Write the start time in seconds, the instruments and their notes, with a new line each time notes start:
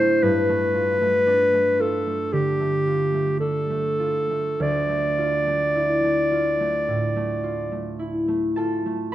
Already playing: harp A2 A3 D4 E4, clarinet C5
0.23 harp G2, clarinet B4
0.49 harp A3
0.74 harp F4
1.01 harp A3
1.27 harp D4
1.53 harp A3
1.79 harp F4, clarinet A4
2.07 harp A3
2.33 harp D3, clarinet G4
2.60 harp A3
2.87 harp F4
3.14 harp A3
3.40 harp D4, clarinet A4
3.70 harp A3
4.00 harp F4
4.30 harp A3
4.60 harp D2, clarinet D5
4.89 harp A3
5.18 harp F4
5.47 harp A3
5.75 harp E4
6.03 harp A3
6.31 harp F4
6.60 harp A3
6.88 harp A2
7.16 harp A3
7.44 harp F4
7.72 harp A3
7.99 harp E4
8.28 harp A3
8.56 harp F4 A4 A5
8.86 harp A3